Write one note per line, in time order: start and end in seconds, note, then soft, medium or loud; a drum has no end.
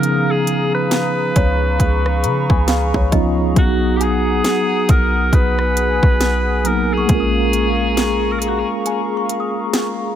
0.00 1.32 C#3 loud
0.00 3.10 F3 medium
0.00 3.08 B3 medium
0.00 3.09 C#4 medium
0.00 3.10 D#4 medium
0.00 3.11 G#4 medium
0.00 7.05 G#4 medium
0.00 0.33 A#4 medium
0.00 3.52 F5 medium
0.00 5.29 A#5 medium
0.00 1.32 D#6 medium
0.00 closed hi-hat medium
0.00 downlifter medium
0.31 0.74 G#4 loud
0.47 closed hi-hat medium
0.75 3.09 B4 loud
0.91 snare loud
0.91 closed hi-hat medium
1.36 1.78 C#2 loud
1.36 3.81 C#5 medium
1.36 3.54 C#6 medium
1.36 kick loud
1.36 closed hi-hat medium
1.80 2.25 C#2 loud
1.80 kick medium
1.80 closed hi-hat medium
2.06 cross-stick medium
2.24 2.48 C#3 medium
2.24 2.48 B5 medium
2.24 closed hi-hat medium
2.50 2.92 C#2 medium
2.50 2.67 G#5 medium
2.50 kick loud
2.68 2.92 F5 medium
2.68 snare loud
2.68 closed hi-hat medium
2.94 3.54 C#2 loud
2.94 3.53 C#5 medium
2.94 kick loud
3.11 3.56 F3 medium
3.11 3.56 B3 medium
3.11 3.57 C#4 medium
3.11 3.57 D#4 medium
3.11 3.96 D#5 medium
3.11 kick loud
3.11 closed hi-hat medium
3.15 3.58 F4 medium
3.53 4.41 B1 loud
3.53 6.60 F#3 medium
3.53 7.06 F#5 medium
3.53 7.06 D#6 medium
3.53 kick loud
3.53 closed hi-hat medium
3.57 6.62 B3 medium
3.57 3.66 C#4 soft
3.57 3.98 F#4 loud
3.62 6.64 F#4 medium
3.66 6.66 D#4 medium
3.97 4.04 G4 medium
4.01 4.92 G#4 loud
4.01 6.45 G#5 medium
4.01 closed hi-hat medium
4.45 snare loud
4.45 closed hi-hat medium
4.89 5.31 B1 loud
4.89 5.36 A#4 loud
4.89 kick loud
4.89 closed hi-hat medium
5.33 6.00 B1 loud
5.33 6.69 B4 loud
5.33 7.08 G#5 medium
5.33 kick medium
5.33 closed hi-hat medium
5.59 cross-stick medium
5.77 closed hi-hat medium
6.03 7.05 B1 loud
6.03 kick medium
6.21 snare loud
6.21 closed hi-hat medium
6.64 7.09 F#3 soft
6.64 7.07 A#3 soft
6.64 7.10 B3 soft
6.64 7.10 D#4 soft
6.64 6.95 A#4 loud
6.64 7.50 A#5 medium
6.64 closed hi-hat medium
6.68 7.11 A#4 medium
6.93 8.33 G#4 loud
6.98 7.78 C#6 medium
7.06 8.63 A#1 loud
7.06 10.15 G#3 medium
7.06 10.15 A#3 medium
7.06 10.15 G#4 medium
7.06 10.15 F5 medium
7.06 10.15 A#5 medium
7.06 10.15 C#6 medium
7.06 kick loud
7.06 closed hi-hat medium
7.10 7.17 C4 soft
7.10 10.15 F4 medium
7.15 10.15 C#4 medium
7.15 10.15 A#4 medium
7.20 7.99 D#6 medium
7.53 closed hi-hat medium
7.97 snare loud
7.97 closed hi-hat medium
8.32 8.41 A#4 medium
8.39 8.50 G#4 medium
8.39 closed hi-hat medium
8.48 8.60 F#4 medium
8.59 8.68 G#4 medium
8.86 10.15 G#5 medium
8.86 closed hi-hat medium
9.17 10.15 C#6 medium
9.29 closed hi-hat medium
9.40 10.15 D#6 medium
9.73 snare loud
9.73 closed hi-hat medium